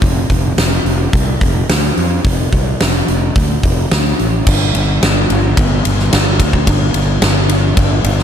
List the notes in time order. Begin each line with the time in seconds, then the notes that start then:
0.02 F1, kick, open hi-hat
0.30 F1, kick, open hi-hat
0.57 F1, snare, open hi-hat
0.85 F1, open hi-hat
1.13 C2, kick, open hi-hat
1.41 F1, kick, open hi-hat
1.69 D2, snare, open hi-hat
1.97 F2, open hi-hat
2.24 F1, kick, open hi-hat
2.53 C2, kick, open hi-hat
2.80 F1, snare, open hi-hat
3.08 F1, open hi-hat
3.36 D2, kick, open hi-hat
3.63 F1, kick, open hi-hat
3.91 D2, snare, open hi-hat
4.19 A1, open hi-hat
4.47 G1, kick, crash
4.75 G1, ride
5.02 G1, snare, ride
5.30 G1, ride
5.57 G1, kick, ride
5.85 G1, ride
5.99 snare
6.13 G1, snare, ride
6.39 D2, kick, ride
6.53 kick
6.67 G1, kick, ride
6.94 G1, ride
7.21 G1, snare, ride
7.49 ride
7.77 G1, kick, ride
8.04 G1, ride
8.19 snare